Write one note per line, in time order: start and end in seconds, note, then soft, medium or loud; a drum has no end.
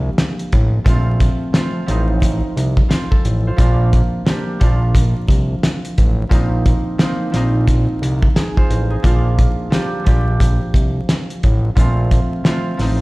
0.00 0.10 C2 loud
0.00 0.83 F3 medium
0.00 0.92 A#3 medium
0.00 1.96 D4 medium
0.00 1.52 G4 loud
0.18 snare loud
0.18 closed hi-hat loud
0.39 closed hi-hat soft
0.52 0.79 A1 loud
0.52 kick loud
0.52 closed hi-hat medium
0.84 1.29 A#1 loud
0.84 1.52 F3 loud
0.84 1.50 A3 medium
0.84 1.51 C4 medium
0.84 kick loud
0.84 closed hi-hat medium
0.88 1.51 F4 medium
1.20 kick loud
1.20 closed hi-hat medium
1.53 1.85 F3 medium
1.53 1.86 A3 medium
1.53 1.87 C4 medium
1.53 snare loud
1.53 closed hi-hat medium
1.57 1.88 F4 medium
1.86 2.42 A1 loud
1.86 3.55 F3 medium
1.86 3.64 A3 medium
1.86 2.89 C4 medium
1.86 closed hi-hat medium
1.90 3.65 D#4 loud
2.22 kick loud
2.22 closed hi-hat loud
2.57 2.83 C2 medium
2.57 closed hi-hat medium
2.77 kick loud
2.89 5.89 C4 medium
2.89 3.47 F4 medium
2.89 snare loud
2.89 closed hi-hat loud
3.11 3.64 A4 medium
3.11 kick medium
3.25 3.52 A1 medium
3.25 closed hi-hat medium
3.47 3.60 F4 medium
3.47 5.45 C5 medium
3.56 4.02 A#1 loud
3.56 4.24 F3 medium
3.56 4.22 A#3 medium
3.56 4.23 D4 medium
3.56 kick loud
3.56 closed hi-hat medium
3.60 4.24 F4 loud
3.93 kick loud
3.93 closed hi-hat medium
4.25 4.58 F3 medium
4.25 4.59 A#3 medium
4.25 4.59 D4 medium
4.25 snare loud
4.25 closed hi-hat medium
4.29 4.60 G4 loud
4.60 5.15 A#1 loud
4.60 6.28 F3 medium
4.60 6.30 A#3 medium
4.60 6.39 D4 medium
4.60 kick medium
4.60 closed hi-hat medium
4.64 7.16 F4 medium
4.95 kick loud
4.95 closed hi-hat loud
5.28 5.56 C2 medium
5.28 kick loud
5.28 closed hi-hat medium
5.63 snare loud
5.63 closed hi-hat loud
5.85 closed hi-hat soft
5.98 6.25 A1 medium
5.98 kick loud
5.98 closed hi-hat medium
6.29 6.75 A#1 loud
6.29 6.97 F3 medium
6.29 6.95 A#3 medium
6.29 6.96 C4 medium
6.29 kick loud
6.29 closed hi-hat medium
6.33 6.97 D#4 loud
6.66 kick loud
6.66 closed hi-hat medium
6.98 7.30 F3 medium
6.98 7.32 A#3 medium
6.98 7.32 C4 medium
6.98 snare loud
6.98 closed hi-hat medium
7.02 7.33 D#4 loud
7.32 7.88 A#1 medium
7.32 9.01 F3 medium
7.32 9.03 A#3 medium
7.32 10.34 C4 medium
7.32 snare soft
7.32 closed hi-hat medium
7.36 8.36 D#4 loud
7.68 kick loud
7.68 closed hi-hat loud
8.02 8.29 C2 medium
8.02 closed hi-hat medium
8.23 kick loud
8.35 8.90 D#4 medium
8.35 8.90 G#4 medium
8.35 snare loud
8.35 closed hi-hat loud
8.57 9.06 F4 medium
8.57 10.55 C5 medium
8.57 kick loud
8.70 8.97 A1 medium
8.70 closed hi-hat medium
8.90 9.79 D#4 medium
8.90 9.80 G#4 medium
9.02 9.48 A#1 loud
9.02 9.69 F3 medium
9.02 9.68 A#3 medium
9.02 9.69 D4 medium
9.02 kick loud
9.02 closed hi-hat medium
9.07 9.70 F4 medium
9.39 kick loud
9.39 closed hi-hat medium
9.70 10.03 F3 medium
9.70 10.04 A#3 medium
9.70 10.05 D4 medium
9.70 snare loud
9.70 closed hi-hat medium
9.74 10.05 G4 loud
10.04 10.61 A#1 loud
10.04 11.74 F3 medium
10.04 11.83 A#3 medium
10.04 12.87 D4 medium
10.04 kick medium
10.04 closed hi-hat medium
10.08 12.43 G4 loud
10.40 kick loud
10.40 closed hi-hat loud
10.74 11.01 C2 loud
10.74 kick medium
10.74 closed hi-hat medium
11.09 snare loud
11.09 closed hi-hat loud
11.30 closed hi-hat soft
11.43 11.70 A1 loud
11.43 kick loud
11.43 closed hi-hat medium
11.75 12.20 A#1 loud
11.75 12.43 F3 loud
11.75 12.41 A3 medium
11.75 12.42 C4 medium
11.75 kick loud
11.75 closed hi-hat medium
11.79 12.42 F4 medium
12.11 kick loud
12.11 closed hi-hat medium
12.44 12.76 F3 medium
12.44 12.77 A3 medium
12.44 12.78 C4 medium
12.44 snare loud
12.44 closed hi-hat medium
12.48 12.79 F4 medium
12.77 13.01 A1 loud
12.77 13.01 F3 medium
12.77 13.01 A3 medium
12.77 13.01 C4 medium
12.77 snare soft
12.77 open hi-hat medium
12.81 13.01 D#4 medium